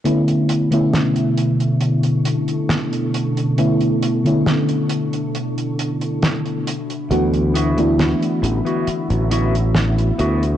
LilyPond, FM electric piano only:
\new Staff \with { instrumentName = "FM electric piano" } { \time 4/4 \key b \minor \tempo 4 = 68 <d a b cis' e'>8. <d a b cis' e'>2.~ <d a b cis' e'>16 | <d a b cis' e'>8. <d a b cis' e'>2~ <d a b cis' e'>8. r8 | <e a b d' fis'>8. <e a b d' e'>2.~ <e a b d' e'>16 | }